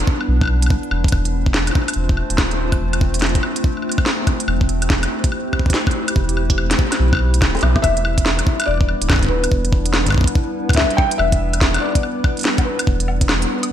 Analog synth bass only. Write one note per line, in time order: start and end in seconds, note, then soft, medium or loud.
0.28 0.76 B1 medium
0.91 1.07 E1 loud
1.12 1.71 E1 loud
1.96 2.23 E1 loud
2.30 2.76 D1 medium
2.80 3.38 E1 loud
4.48 5.06 E1 loud
6.16 6.74 E1 loud
7.00 7.43 B1 medium
7.42 7.57 D1 loud
7.63 7.78 B1 medium
7.84 8.42 E1 loud
8.68 8.94 E1 medium
9.02 9.47 D1 loud
9.52 10.10 E1 loud
11.19 11.78 E1 loud
12.87 13.45 E1 loud